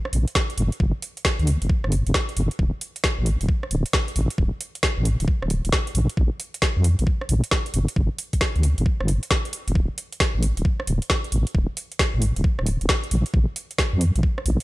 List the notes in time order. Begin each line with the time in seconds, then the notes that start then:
0.05 cross-stick
0.13 A#1, open hi-hat
0.28 closed hi-hat
0.35 kick, snare
0.50 closed hi-hat
0.58 G1, open hi-hat
0.72 closed hi-hat
0.80 G1, kick
1.02 open hi-hat
1.17 closed hi-hat
1.25 kick, snare
1.39 D2, closed hi-hat
1.47 open hi-hat
1.62 G1, closed hi-hat
1.70 kick
1.84 G1, cross-stick
1.92 open hi-hat
2.07 G1, closed hi-hat
2.14 kick, snare
2.29 closed hi-hat
2.37 G1, open hi-hat
2.51 closed hi-hat
2.59 D1, kick
2.81 open hi-hat
2.96 closed hi-hat
3.04 kick, snare
3.19 A1
3.26 open hi-hat
3.41 D1, closed hi-hat
3.49 kick
3.63 cross-stick
3.71 D1, open hi-hat
3.86 closed hi-hat
3.93 kick, snare
4.08 closed hi-hat
4.16 A1, open hi-hat
4.30 closed hi-hat
4.38 D1, kick
4.61 open hi-hat
4.75 closed hi-hat
4.83 kick, snare
4.98 A1
5.05 open hi-hat
5.20 D1, closed hi-hat
5.28 kick
5.42 D1, cross-stick
5.50 open hi-hat
5.65 D1, closed hi-hat
5.72 kick, snare
5.87 closed hi-hat
5.95 A#1, open hi-hat
6.10 closed hi-hat
6.17 A#1, kick
6.40 open hi-hat
6.54 closed hi-hat
6.62 kick, snare
6.77 F2
6.84 open hi-hat
6.99 A#1, closed hi-hat
7.07 kick
7.21 cross-stick
7.29 A#1, open hi-hat
7.44 closed hi-hat
7.51 kick, snare
7.66 closed hi-hat
7.74 G1, open hi-hat
7.88 closed hi-hat
7.96 G1, kick
8.19 open hi-hat
8.33 kick, closed hi-hat
8.41 kick, snare
8.56 D2, closed hi-hat
8.63 open hi-hat
8.78 G1, closed hi-hat
8.86 kick
9.00 G1, cross-stick
9.08 open hi-hat
9.23 closed hi-hat
9.31 kick, snare
9.45 closed hi-hat
9.53 open hi-hat
9.68 F1, closed hi-hat
9.75 D1, kick
9.98 open hi-hat
10.12 closed hi-hat
10.20 kick, snare
10.35 A1
10.43 open hi-hat
10.57 D1, closed hi-hat
10.65 kick
10.80 cross-stick
10.87 D1, open hi-hat
11.02 closed hi-hat
11.10 kick, snare
11.24 closed hi-hat
11.32 A1, open hi-hat
11.47 closed hi-hat
11.55 D1, kick
11.77 open hi-hat
11.92 closed hi-hat
11.99 kick, snare
12.14 A1
12.22 open hi-hat
12.36 D1, closed hi-hat
12.44 kick
12.59 D1, cross-stick
12.66 open hi-hat
12.81 D1, closed hi-hat
12.89 kick, snare
13.04 closed hi-hat
13.11 A#1, open hi-hat
13.26 closed hi-hat
13.34 A#1, kick
13.56 open hi-hat
13.71 closed hi-hat
13.78 kick, snare
13.93 F2
14.01 open hi-hat
14.15 A#1, closed hi-hat
14.23 kick
14.38 cross-stick
14.46 A#1, open hi-hat